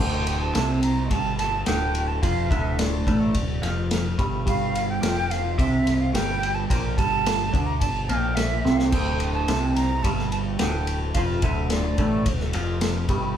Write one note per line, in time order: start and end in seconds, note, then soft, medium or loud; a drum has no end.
0.00 0.51 D1 medium
0.00 0.54 D2 loud
0.00 0.54 D3 loud
0.00 0.43 G5 loud
0.27 ride medium
0.41 0.82 A5 medium
0.55 1.07 C2 medium
0.55 1.11 C3 medium
0.55 1.11 C4 medium
0.55 snare loud
0.55 ride medium
0.83 1.12 A#5 loud
0.83 ride medium
1.11 1.63 G1 medium
1.11 1.66 G2 medium
1.11 1.66 G3 loud
1.11 1.38 A5 loud
1.11 kick loud
1.11 ride medium
1.38 1.65 A5 medium
1.38 snare soft
1.38 ride medium
1.65 2.19 D1 loud
1.65 2.22 D2 medium
1.65 2.23 D3 medium
1.65 2.09 G5 loud
1.65 snare loud
1.65 ride loud
1.95 ride medium
2.08 2.23 A5 medium
2.22 2.49 F1 medium
2.22 2.50 F2 medium
2.22 2.50 F3 loud
2.22 2.51 F5 medium
2.22 kick loud
2.22 ride loud
2.50 3.03 D1 loud
2.50 3.06 D2 medium
2.50 3.06 D3 loud
2.50 2.80 E5 medium
2.50 kick loud
2.50 ride medium
2.79 3.63 D5 medium
2.79 snare loud
2.79 ride medium
3.07 3.33 A1 medium
3.07 3.34 A2 medium
3.07 3.35 A3 loud
3.07 kick loud
3.07 ride medium
3.34 3.61 D1 medium
3.34 kick medium
3.34 ride medium
3.62 4.14 F1 medium
3.62 4.17 F2 medium
3.62 4.18 F3 loud
3.62 snare soft
3.62 ride medium
3.91 snare loud
3.91 ride medium
4.18 4.45 G1 medium
4.18 4.44 G2 loud
4.18 4.45 G3 loud
4.18 kick loud
4.18 ride medium
4.46 4.99 G1 medium
4.46 5.01 G2 loud
4.46 5.01 G3 loud
4.46 4.86 F5 medium
4.46 kick loud
4.46 ride medium
4.75 ride medium
4.89 5.32 G5 medium
5.01 5.55 F1 medium
5.01 5.57 F2 medium
5.01 5.57 F3 loud
5.01 snare loud
5.01 ride loud
5.31 5.60 F5 medium
5.31 snare soft
5.31 ride medium
5.58 6.10 C2 medium
5.58 6.13 C3 medium
5.58 6.13 C4 loud
5.58 6.02 E5 medium
5.58 kick loud
5.58 ride medium
5.87 snare soft
5.87 ride medium
6.01 6.13 F5 medium
6.13 6.66 G1 loud
6.13 6.69 G2 medium
6.13 6.69 G3 medium
6.13 6.56 G5 loud
6.13 snare loud
6.13 ride loud
6.43 ride medium
6.55 6.68 A5 medium
6.68 6.96 A#1 medium
6.68 6.97 A#2 medium
6.68 6.97 A#3 loud
6.68 6.95 G5 loud
6.68 kick loud
6.68 ride loud
6.97 7.50 G1 medium
6.97 7.53 G2 medium
6.97 7.53 G3 loud
6.97 7.68 A5 loud
6.97 kick loud
6.97 ride medium
7.26 snare loud
7.26 ride loud
7.53 7.80 D2 medium
7.53 7.80 D3 medium
7.53 7.81 D4 loud
7.53 kick loud
7.53 ride medium
7.66 7.79 A#5 loud
7.80 8.07 G1 medium
7.80 8.04 G2 medium
7.80 8.09 A5 loud
7.80 kick medium
7.80 ride medium
8.07 8.61 A#1 medium
8.07 8.64 A#2 medium
8.07 8.65 A#3 medium
8.07 8.37 G5 medium
8.07 ride medium
8.35 8.78 E5 loud
8.35 snare loud
8.35 ride medium
8.65 8.91 C2 medium
8.65 8.92 C3 medium
8.65 8.92 C4 loud
8.65 snare medium
8.77 8.90 F5 medium
8.77 snare medium
8.90 9.45 D1 loud
8.90 9.48 D2 loud
8.90 9.48 D3 loud
8.90 9.30 G5 loud
8.90 kick loud
8.90 crash medium
8.90 ride medium
9.20 ride medium
9.33 9.73 A5 medium
9.48 10.00 C2 medium
9.48 10.04 C3 medium
9.48 10.04 C4 loud
9.48 snare loud
9.48 ride loud
9.75 10.04 A#5 loud
9.75 snare soft
9.75 ride medium
10.03 10.56 G1 medium
10.03 10.59 G2 medium
10.03 10.60 G3 loud
10.03 10.30 A5 loud
10.03 kick loud
10.03 ride medium
10.19 snare soft
10.31 10.37 A5 medium
10.31 ride medium
10.59 11.12 D1 medium
10.59 11.15 D2 medium
10.59 11.16 D3 medium
10.59 10.98 G5 loud
10.59 snare loud
10.59 ride loud
10.87 ride medium
11.14 11.41 F1 medium
11.14 11.43 F2 medium
11.14 11.43 F3 loud
11.14 11.21 F5 medium
11.14 kick loud
11.14 ride medium
11.42 11.94 D1 medium
11.42 11.98 D2 medium
11.42 11.98 D3 medium
11.42 11.68 E5 medium
11.42 kick loud
11.42 ride medium
11.69 12.50 D5 medium
11.69 snare loud
11.69 ride loud
11.98 12.24 A1 medium
11.98 12.25 A2 medium
11.98 12.26 A3 loud
11.98 kick loud
11.98 ride medium
12.26 12.52 D1 medium
12.26 12.49 D2 medium
12.26 kick medium
12.26 ride loud
12.40 snare soft
12.53 13.06 F1 medium
12.53 13.09 F2 medium
12.53 13.09 F3 loud
12.53 ride medium
12.81 snare loud
12.81 ride medium
13.09 13.35 G1 medium
13.09 13.35 G2 loud
13.09 13.36 G3 loud
13.09 kick loud
13.09 ride medium